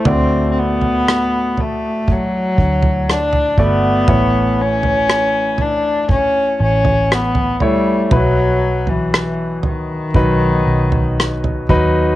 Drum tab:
SD |----r-------r---|----r-------r---|----r-------r---|
FT |o--o--o-o--o-oo-|o--o--o-o--o-oo-|o--o--o-o--o-oo-|
BD |--------o-o---o-|o-------o-------|--------o-----o-|